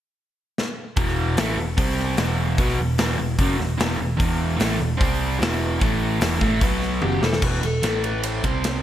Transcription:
0.58 snare
0.97 E1 E2 B2 E3, kick, open hi-hat
1.08 snare
1.37 A1 A2 E3 A3, snare, open hi-hat
1.57 E1 E2 B2
1.77 C2 C3 G3 C4, kick, open hi-hat
1.99 snare
2.17 E1 E2 B2 E3, snare, open hi-hat
2.58 B1 B2 F#3 B3, kick, open hi-hat
2.69 snare
2.78 E1 E2 B2
2.98 E1 E2 B2 E3, snare, open hi-hat
3.19 E1 E2 B2
3.39 F#1 F#2 C#3 F#3, kick, open hi-hat
3.58 E1 E2 B2, snare
3.78 E1 E2 B2 E3, snare, open hi-hat
3.98 E1 E2 B2
4.18 E1 E2 B2 E3, kick, open hi-hat
4.57 A1 A2 E3 A3, snare, open hi-hat
4.78 E1 E2 B2
4.97 C2 C3 G3 C4, kick, open hi-hat
5.39 E1 E2 B2 E3, snare, open hi-hat
5.79 A1 A2 E3 A3, kick, open hi-hat
6.20 E1 E2 B2 E3, snare, open hi-hat
6.40 A1 A2 E3 A3, kick
6.61 B1 B2 F#3 B3, kick, open hi-hat
6.82 snare
7.02 F#1 F#2 C#3 F#3 G4, high tom
7.21 E1 E2 B2 E3 A4, snare
7.33 snare
7.42 E1 E2 B2 E3 B4, kick, crash
7.62 E1 E2 B2 A4, ride
7.82 A1 A2 E3 A3, snare, ride
8.04 B4, ride
8.23 C5, ride
8.44 C2 C3 G3 C4, kick, ride
8.64 snare, ride

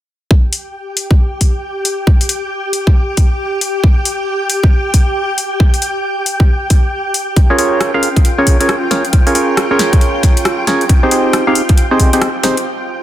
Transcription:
0.30 G4 G5, kick
0.53 open hi-hat
0.97 open hi-hat
1.11 kick
1.41 kick, open hi-hat
1.85 open hi-hat
2.07 kick
2.21 open hi-hat
2.29 open hi-hat
2.73 open hi-hat
2.87 kick
3.17 kick, open hi-hat
3.61 open hi-hat
3.84 kick
4.05 open hi-hat
4.50 open hi-hat
4.64 kick
4.94 kick, open hi-hat
5.38 open hi-hat
5.60 kick
5.74 open hi-hat
5.82 open hi-hat
6.26 open hi-hat
6.40 kick
6.70 kick, open hi-hat
7.14 open hi-hat
7.36 F4 G5, kick, closed hi-hat
7.50 C#4 F4 G#4 A#4 C#5
7.58 C#4 F4 G#4 A#4 C#5, open hi-hat
7.81 cross-stick, closed hi-hat
7.94 C#4 F4 G#4 A#4 F5
8.03 open hi-hat
8.16 kick, closed hi-hat
8.25 closed hi-hat
8.38 C#4 F4 G#4 A#4 C#5
8.47 kick, open hi-hat
8.61 C#4 F4 G#4 A#4 C#5, closed hi-hat
8.69 cross-stick, closed hi-hat
8.91 C#4 F4 G#4 A#4 C#5, snare, open hi-hat
9.05 closed hi-hat
9.13 kick, closed hi-hat
9.27 C#4 F4 G#4 A#4 C#5, open hi-hat
9.35 C#4 F4 G#4 A#4 C#5, open hi-hat
9.57 cross-stick, closed hi-hat
9.71 C#4 F4 G#4 A#4 C#5
9.79 snare, open hi-hat
9.93 kick, closed hi-hat
10.01 closed hi-hat
10.23 kick, snare, open hi-hat
10.37 closed hi-hat
10.45 cross-stick, closed hi-hat
10.67 C#4 F4 G#4 A#4 C#5, snare, open hi-hat
10.81 closed hi-hat
10.89 kick, closed hi-hat
11.03 C4 D#4 G4 G#4 C5
11.11 C4 D#4 G4 G#4 C5, open hi-hat
11.33 cross-stick, closed hi-hat
11.47 C4 D#4 G4 G#4 F5
11.55 open hi-hat
11.69 kick, closed hi-hat
11.78 closed hi-hat
11.91 C4 D#4 G4 G#4 C5
12.00 kick, open hi-hat
12.13 C4 D#4 G4 G#4 C5, closed hi-hat
12.22 cross-stick, closed hi-hat
12.44 C4 D#4 G4 G#4 C5, snare, open hi-hat
12.57 closed hi-hat

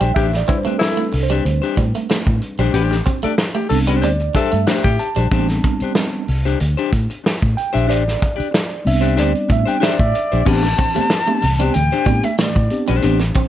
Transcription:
Already playing: G5
0.01 A#1 G3 D4 G4 C5, closed hi-hat
0.14 A1 D4 G4 C5 E5, kick, closed hi-hat
0.33 D5, muted clean electric guitar stroke, snare, closed hi-hat
0.47 G3 C4 D4 E4 B4, muted clean electric guitar stroke, kick, closed hi-hat
0.57 C5
0.65 A3 D4 G4 C5, muted fingered electric bass stroke, closed hi-hat
0.78 E4 A4, snare
0.97 A3, muted clean electric guitar stroke, closed hi-hat
1.13 C2, muted clean electric guitar stroke, open hi-hat
1.23 C5
1.30 G3 D4 G4 C5, closed hi-hat
1.45 D2, muted clean electric guitar stroke, closed hi-hat
1.62 D4 G4 C5, closed hi-hat
1.77 A2 G3, muted clean electric guitar stroke, kick, closed hi-hat
1.95 A3, muted clean electric guitar stroke, closed hi-hat
2.10 A3, muted clean electric guitar stroke, snare
2.27 A2, muted clean electric guitar stroke, kick, closed hi-hat
2.42 closed hi-hat
2.59 A#1 G3 D4 G4 C5, closed hi-hat
2.73 A1 D4 G4 C5, closed hi-hat
2.91 muted clean electric guitar stroke, snare, closed hi-hat
3.06 C4, muted clean electric guitar stroke, kick, closed hi-hat
3.23 A3 D4 G4 A4 D5, muted fingered electric bass stroke, closed hi-hat
3.38 muted clean electric guitar stroke, snare
3.55 A3 G4, muted clean electric guitar stroke
3.69 C2 G3 B3 C4 D4 A4, muted clean electric guitar stroke, open hi-hat
3.87 G3 D4 G4 C5, closed hi-hat
4.02 D2 C5 D5, muted clean electric guitar stroke, closed hi-hat
4.20 muted clean electric guitar stroke, closed hi-hat
4.35 G3 D4 G4 A4 C5 E5, kick, closed hi-hat
4.52 G2 A3, closed hi-hat
4.67 A3 D4 G4 C5, snare
4.83 A2 G4, muted clean electric guitar stroke, kick, closed hi-hat
4.99 A5, muted clean electric guitar stroke, closed hi-hat
5.16 A#1 G3 D4 G4 C5, closed hi-hat
5.31 A1 G3 B3 C4 D4 G4 C5, kick, closed hi-hat
5.48 snare, closed hi-hat
5.64 muted clean electric guitar stroke, kick, closed hi-hat
5.80 D4 G4 C5, muted fingered electric bass stroke, closed hi-hat
5.95 muted clean electric guitar stroke, snare
6.13 muted clean electric guitar stroke, closed hi-hat
6.28 C2, open hi-hat
6.45 D4 G4 C5, closed hi-hat
6.60 D2, closed hi-hat
6.77 D4 G4 C5, closed hi-hat
6.93 A2, kick, closed hi-hat
7.10 muted clean electric guitar stroke, closed hi-hat
7.24 muted clean electric guitar stroke, snare
7.41 A2, muted clean electric guitar stroke, kick, closed hi-hat
7.57 G5, closed hi-hat
7.73 A#1 D4 G4 C5 E5, closed hi-hat
7.87 A1 D4 G4 C5 D5, closed hi-hat
8.08 snare
8.19 muted clean electric guitar stroke, kick, closed hi-hat
8.36 D4 G4 D5, muted fingered electric bass stroke, closed hi-hat
8.51 muted clean electric guitar stroke, snare
8.70 muted clean electric guitar stroke, closed hi-hat
8.85 C2 G3 B3 C4 D4 E5, open hi-hat
9.01 D4 G4 C5, closed hi-hat
9.16 D2 D4 G4 C5 D5, closed hi-hat
9.35 closed hi-hat
9.49 A2 E5, muted clean electric guitar stroke, kick, closed hi-hat
9.66 D4 G4 C5 G5, closed hi-hat
9.80 D4 G4 C5 D5 E5, snare
9.99 A2 E5, kick, closed hi-hat
10.14 muted clean electric guitar stroke, closed hi-hat
10.32 A#1 D4 G4 C5, closed hi-hat
10.45 A1 B3 C4 D4 G4 C5 A5, kick, crash
10.63 muted clean electric guitar stroke, snare, closed hi-hat
10.78 A2 E3 C4, muted clean electric guitar stroke, kick, closed hi-hat
10.94 A3 B3 C4 D4 G4 C5, muted fingered electric bass stroke, closed hi-hat
11.10 muted clean electric guitar stroke, snare
11.27 A3 B3 C4 D4 G4, muted clean electric guitar stroke, closed hi-hat
11.42 C2 A2 E3, muted clean electric guitar stroke, open hi-hat
11.59 G3 B3 C4 D4 G4 C5, closed hi-hat
11.74 D2 A2 E3 G5, muted clean electric guitar stroke, closed hi-hat
11.91 D4 G4 C5, closed hi-hat
12.06 A2 G3 B3 C4 D4 G4, muted clean electric guitar stroke, kick, closed hi-hat
12.23 A3 D4 G4 E5, muted clean electric guitar stroke, closed hi-hat
12.39 A2 E3 A3 D5, muted clean electric guitar stroke, snare
12.55 A2, muted clean electric guitar stroke, kick, closed hi-hat
12.70 B3 C4 D4 G4, closed hi-hat
12.88 A#1 G3 D4 G4 C5, closed hi-hat
13.02 A1 B3 C4 D4 G4 C5, closed hi-hat
13.19 muted clean electric guitar stroke, snare, closed hi-hat
13.34 A2 E3 C4, muted clean electric guitar stroke, kick, closed hi-hat

